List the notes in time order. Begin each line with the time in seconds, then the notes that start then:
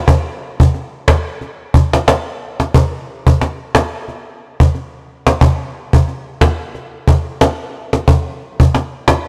0.08 cajon bass
0.60 cajon bass
0.74 cajon slap
1.08 cajon bass, cajon slap
1.41 cajon slap
1.74 cajon bass
1.93 cajon slap
2.08 cajon slap
2.60 cajon slap
2.74 cajon bass
3.27 cajon bass
3.41 cajon slap
3.75 cajon slap
4.08 cajon slap
4.60 cajon bass
4.75 cajon slap
5.27 cajon slap
5.41 cajon bass
5.93 cajon bass
6.08 cajon slap
6.41 cajon bass, cajon slap
6.75 cajon slap
7.08 cajon bass
7.41 cajon slap
7.93 cajon slap
8.08 cajon bass
8.60 cajon bass
8.75 cajon slap
9.08 cajon slap